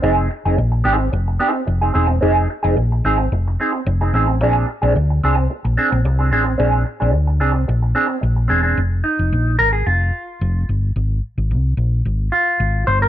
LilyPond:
<<
  \new Staff \with { instrumentName = "Clean electric guitar" } { \time 4/4 \key f \dorian \tempo 4 = 110 <c' ees' aes'>8 r16 <c' ees' aes'>16 r8 <c' ees' aes'>16 r8. <c' ees' aes'>16 r8 <c' ees' aes'>16 <c' ees' aes'>16 r16 | <c' ees' aes'>8 r16 <c' ees' aes'>16 r8 <c' ees' aes'>16 r8. <c' ees' aes'>16 r8 <c' ees' aes'>16 <c' ees' aes'>16 r16 | <c' d' aes'>8 r16 <c' d' aes'>16 r8 <c' d' aes'>16 r8. <c' d' aes'>16 r8 <c' d' aes'>16 <c' d' aes'>16 r16 | <c' d' aes'>8 r16 <c' d' aes'>16 r8 <c' d' aes'>16 r8. <c' d' aes'>16 r8. <c' d' aes'>16 <c' d' aes'>16 |
r8 ees'4 bes'16 aes'16 f'4. r8 | r2 r8 f'4 c''16 bes'16 | }
  \new Staff \with { instrumentName = "Fingered electric bass" } { \clef bass \time 4/4 \key f \dorian f,,8 r16 f,,16 bes,,8 aes,,8 f,,8 r8 f,,8 e,,8 | f,,8 r16 f,,16 bes,,8 aes,,8 f,,8 r8 f,,8 a,,8 | bes,,8 r16 bes,,16 d,8 c,8 r16 bes,,16 r16 bes,,16 c,8 a,,8 | bes,,8 r16 bes,,16 d,8 c,8 bes,,8 r8 bes,,8 e,,8 |
f,,8 r16 f,,16 bes,,8 aes,,8 f,,8 r8 f,,8 g,,8 | aes,,8 r16 aes,,16 c,8 bes,,8 aes,,8 r8 aes,,8 g,,8 | }
>>